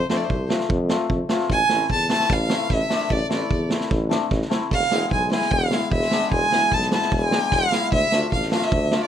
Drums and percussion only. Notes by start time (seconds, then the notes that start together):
0.10 snare
0.30 kick
0.50 snare
0.60 snare
0.70 kick
0.90 snare
1.10 kick
1.29 snare
1.39 snare
1.50 kick
1.69 snare
1.90 kick
2.10 snare
2.20 snare
2.29 kick, snare
2.50 snare
2.70 kick, snare
2.90 snare
3.00 snare
3.10 kick
3.30 snare
3.51 kick
3.70 snare
3.81 snare
3.91 kick, snare
4.11 snare
4.31 kick, snare
4.42 snare
4.51 snare
4.71 kick
4.81 snare
4.91 snare
5.11 kick
5.31 snare
5.41 snare
5.51 kick
5.71 snare
5.92 kick
6.02 snare
6.11 snare
6.22 snare
6.32 kick
6.52 snare
6.72 kick
6.81 snare
6.92 snare
7.02 snare
7.12 kick, snare
7.32 snare
7.52 kick, snare
7.72 snare
7.92 kick
8.12 snare
8.32 kick
8.42 snare
8.52 snare
8.62 snare
8.72 kick
8.91 snare